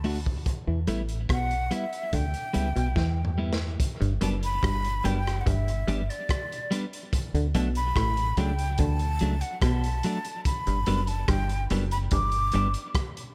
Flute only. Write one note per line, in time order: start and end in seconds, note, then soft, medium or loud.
0.00 0.27 A5 medium
1.32 1.74 F#5 loud
1.73 2.16 E5 medium
2.14 3.39 G5 loud
4.23 4.29 A5 loud
4.44 5.07 B5 loud
5.05 5.42 G5 loud
5.41 5.48 F#5 medium
5.47 6.11 E5 loud
6.10 6.71 D5 medium
7.55 7.61 A5 medium
7.77 8.40 B5 medium
8.38 8.81 G5 medium
8.79 9.43 A5 loud
9.41 9.61 F#5 medium
9.62 10.41 A5 medium
10.46 11.10 B5 loud
11.08 11.31 A5 loud
11.29 11.64 G5 loud
11.92 11.98 B5 loud
12.13 12.91 D6 loud